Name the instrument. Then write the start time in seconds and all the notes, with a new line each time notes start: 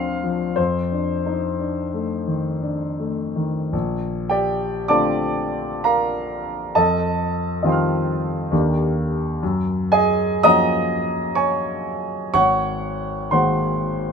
grand piano
Already playing: D2 F3 C4 D4 D#4 F5 G5
0.23 F3
0.56 F2 C5
0.92 D4
1.26 D#4
1.60 D4
1.94 A3
2.28 D#3
2.62 D4
2.99 A3
3.36 D#3
3.73 A#1
4.29 G4 D5 G5
4.88 D3 A3 C4 F4 D5 A5 D6
5.84 A#4 F5 A#5
6.75 F2 A4 D#5 A5
7.63 D#3 G3 C4 F4 D#5 G5
7.69 C6 F6
8.51 D#2 D#3 A#3 D4 G4
9.43 F#2
9.92 G#4 D#5 G#5
10.43 F3 A#3 C#4 F#4 D#5 A#5 D#6
11.35 C#5 G#5 C#6
12.34 G#1 C#5 F#5 C#6
13.31 D#3 G#3 A#3 F#4 C5 F#5 C6